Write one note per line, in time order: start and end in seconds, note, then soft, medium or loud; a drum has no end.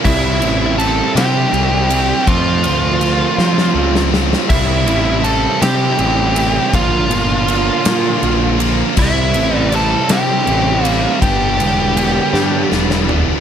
0.03 0.42 C2 loud
0.03 0.76 C3 loud
0.03 0.42 G3 loud
0.03 0.41 C4 loud
0.03 0.75 E4 medium
0.03 0.39 E4 loud
0.03 0.75 E5 medium
0.03 kick loud
0.03 crash loud
0.40 1.00 A1 medium
0.40 0.78 G3 medium
0.40 0.79 C4 medium
0.40 0.79 E4 medium
0.40 ride medium
0.77 1.49 C3 medium
0.77 1.17 G3 medium
0.77 1.16 C4 medium
0.77 1.14 E4 medium
0.77 1.13 A4 medium
0.77 1.13 A5 loud
0.77 ride medium
1.15 1.45 C3 loud
1.15 1.51 G3 medium
1.15 1.52 C4 medium
1.15 1.52 E4 medium
1.15 2.24 G4 medium
1.15 2.31 G5 loud
1.15 snare loud
1.15 ride loud
1.51 2.11 C2 medium
1.51 2.24 C3 medium
1.51 1.90 G3 medium
1.51 1.90 C4 medium
1.51 1.87 E4 medium
1.51 ride medium
1.89 2.27 G3 medium
1.89 2.27 C4 medium
1.89 2.24 E4 medium
1.89 ride medium
2.26 2.66 F2 loud
2.26 2.99 F3 loud
2.26 2.64 A3 loud
2.26 2.64 C4 loud
2.26 4.09 F4 medium
2.26 2.61 F4 loud
2.26 4.10 F5 medium
2.26 kick loud
2.26 ride medium
2.63 3.24 D2 medium
2.63 3.00 A3 medium
2.63 3.02 C4 medium
2.63 3.02 F4 medium
2.63 ride medium
3.00 3.73 F3 medium
3.00 3.39 A3 medium
3.00 3.37 C4 medium
3.00 3.36 F4 medium
3.00 ride medium
3.37 3.68 F3 loud
3.37 3.73 A3 medium
3.37 3.75 C4 medium
3.37 3.76 F4 medium
3.37 snare medium
3.58 snare medium
3.74 4.34 C#2 medium
3.74 4.47 F3 medium
3.74 4.12 A3 medium
3.74 4.11 C4 medium
3.74 4.09 F4 medium
3.95 snare medium
4.11 4.48 A3 medium
4.11 4.48 C4 medium
4.11 4.47 F4 medium
4.11 snare loud
4.33 snare medium
4.49 4.87 C2 loud
4.49 5.21 C3 loud
4.49 4.87 G3 loud
4.49 4.85 C4 loud
4.49 5.21 E4 medium
4.49 4.84 E4 loud
4.49 5.26 E5 loud
4.49 kick loud
4.49 crash loud
4.85 5.46 A1 medium
4.85 5.22 G3 medium
4.85 5.23 C4 medium
4.85 5.24 E4 medium
4.85 ride medium
5.22 5.96 C3 medium
5.22 5.61 G3 medium
5.22 5.60 C4 medium
5.22 5.58 E4 medium
5.22 5.60 A4 medium
5.22 5.61 A5 loud
5.22 ride medium
5.60 5.91 C3 loud
5.60 5.97 G3 medium
5.60 5.98 C4 medium
5.60 5.99 E4 medium
5.60 6.70 G4 medium
5.60 6.77 G5 loud
5.60 snare loud
5.60 ride loud
5.98 6.58 A1 medium
5.98 6.71 C3 medium
5.98 6.36 G3 medium
5.98 6.34 C4 medium
5.98 6.33 E4 medium
5.98 ride medium
6.34 6.72 G3 medium
6.34 6.71 C4 medium
6.34 6.70 E4 medium
6.34 ride medium
6.72 7.10 A#1 loud
6.72 7.48 A#2 loud
6.72 7.44 D3 loud
6.72 7.11 F3 loud
6.72 7.09 A#3 loud
6.72 7.08 F4 loud
6.72 8.57 F4 medium
6.72 8.56 F5 medium
6.72 kick loud
6.72 ride loud
7.10 7.69 G1 medium
7.10 7.46 F3 medium
7.10 7.47 A#3 medium
7.10 7.47 F4 medium
7.10 ride medium
7.46 8.19 D3 medium
7.46 7.86 F3 medium
7.46 7.85 A#3 medium
7.46 7.83 F4 medium
7.46 ride medium
7.84 8.15 A#2 loud
7.84 8.20 F3 medium
7.84 8.22 A#3 medium
7.84 8.22 F4 medium
7.84 snare loud
7.84 ride loud
8.20 8.81 A#1 medium
8.20 8.94 D3 medium
8.20 8.59 F3 medium
8.20 8.58 A#3 medium
8.20 8.56 F4 medium
8.20 ride medium
8.58 8.95 F3 medium
8.58 8.95 A#3 medium
8.58 8.94 F4 medium
8.58 ride medium
8.96 9.35 C2 loud
8.96 9.69 C3 loud
8.96 9.36 G3 loud
8.96 9.33 C4 loud
8.96 9.32 E4 loud
8.96 9.69 E4 medium
8.96 kick loud
8.96 crash medium
9.02 9.57 E5 loud
9.33 9.94 A1 medium
9.33 9.70 G3 medium
9.33 9.70 C4 medium
9.33 9.71 E4 medium
9.33 ride medium
9.57 9.76 D5 loud
9.70 10.43 C3 medium
9.70 10.10 G3 medium
9.70 10.08 C4 medium
9.70 10.06 E4 medium
9.70 ride medium
9.74 10.08 A4 medium
9.74 10.12 A5 loud
10.08 10.39 C3 loud
10.08 10.46 G3 medium
10.08 10.46 C4 medium
10.08 10.47 E4 medium
10.08 11.18 G4 medium
10.08 snare loud
10.08 ride loud
10.12 10.86 G5 loud
10.45 11.06 A1 medium
10.45 11.18 C3 medium
10.45 10.85 G3 medium
10.45 10.82 C4 medium
10.45 10.81 E4 medium
10.45 ride medium
10.83 11.21 G3 medium
10.83 11.19 C4 medium
10.83 11.18 E4 medium
10.83 11.19 F5 loud
10.83 ride medium
11.21 11.59 G1 loud
11.21 11.96 G2 loud
11.21 11.94 D3 loud
11.21 11.59 G3 loud
11.21 11.58 B3 loud
11.21 11.57 D4 loud
11.21 12.68 G4 medium
11.21 12.67 G5 loud
11.21 kick loud
11.21 ride loud
11.58 12.18 E1 medium
11.58 11.94 G3 medium
11.58 11.96 B3 medium
11.58 11.96 D4 medium
11.58 ride medium
11.95 12.70 D3 medium
11.95 12.34 G3 medium
11.95 12.33 B3 medium
11.95 12.32 D4 medium
11.95 ride medium
12.33 12.63 G2 medium
12.33 12.70 G3 medium
12.33 12.71 B3 medium
12.33 12.72 D4 medium
12.33 snare medium
12.71 13.30 E1 medium
12.71 13.40 D3 medium
12.71 13.09 G3 medium
12.71 13.08 B3 medium
12.71 13.06 D4 medium
12.71 snare medium
12.90 snare medium
13.08 13.40 G3 medium
13.08 13.40 B3 medium
13.08 13.40 D4 medium
13.08 floor tom loud